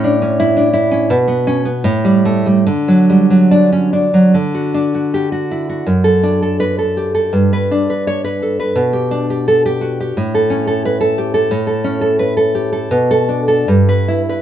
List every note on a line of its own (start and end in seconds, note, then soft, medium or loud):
0.00 1.07 A2 loud
0.00 0.21 C#4 medium
0.00 0.56 D4 medium
0.22 0.90 C#4 medium
0.40 0.68 E4 loud
0.57 1.10 D4 medium
0.73 1.10 E4 medium
0.91 1.10 C#4 medium
1.10 1.83 B2 loud
1.28 1.64 B3 medium
1.47 1.66 C#4 medium
1.65 1.85 B3 medium
1.84 2.65 A2 loud
2.04 2.45 G3 medium
2.25 2.46 A3 medium
2.46 2.67 G3 medium
2.67 4.30 D3 medium
2.88 3.29 F#3 medium
3.10 4.34 G3 medium
3.30 4.13 F#3 medium
3.51 3.72 D4 medium
3.72 3.92 C#4 medium
3.93 4.34 D4 medium
4.14 4.34 F#3 medium
4.34 5.82 D3 medium
4.54 4.93 F#4 medium
4.74 5.87 D4 medium
4.95 5.31 F#4 medium
5.14 5.32 G4 medium
5.32 5.68 F#4 medium
5.51 5.87 E4 medium
5.69 5.87 F#4 medium
5.86 7.30 F#2 medium
6.04 6.41 A4 medium
6.23 7.34 D4 medium
6.42 6.59 A4 medium
6.60 6.78 B4 medium
6.78 7.13 A4 medium
6.97 7.34 G4 medium
7.15 7.34 A4 medium
7.33 8.73 G2 medium
7.53 7.89 B4 medium
7.71 8.77 D4 medium
7.90 8.07 B4 medium
8.07 8.24 C#5 medium
8.24 8.58 B4 medium
8.42 8.77 A4 medium
8.60 8.77 B4 medium
8.75 10.12 B2 medium
8.93 9.29 G4 medium
9.11 10.16 D4 medium
9.30 9.64 G4 medium
9.48 9.65 A4 medium
9.66 9.99 G4 medium
9.81 10.16 F#4 medium
10.00 10.17 G4 medium
10.17 11.48 A2 medium
10.35 10.66 A4 medium
10.50 11.51 C#4 medium
10.67 10.85 A4 medium
10.85 11.00 B4 medium
11.01 11.33 A4 medium
11.18 11.52 G4 medium
11.34 11.51 A4 medium
11.51 12.87 A2 medium
11.67 12.00 A4 medium
11.84 12.91 C#4 medium
12.01 12.19 A4 medium
12.19 12.36 B4 medium
12.37 12.71 A4 medium
12.55 12.91 G4 medium
12.73 12.91 A4 medium
12.91 13.64 B2 medium
13.11 13.40 A4 medium
13.29 13.67 D4 medium
13.48 13.67 A4 medium
13.68 14.42 G2 medium
13.89 14.21 B4 medium
14.08 14.42 E4 medium
14.29 14.42 B4 medium